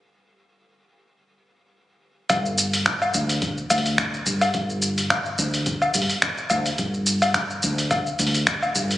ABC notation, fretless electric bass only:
X:1
M:4/4
L:1/8
Q:"Swing 16ths" 1/4=107
K:Cdor
V:1 name="Fretless electric bass" clef=bass
G,,,8 | G,,,3 D,,2 D,,2 G,,, | G,,,3 D,,2 G,,, z D,, | G,,,3 D,,2 D,,2 G,,, |]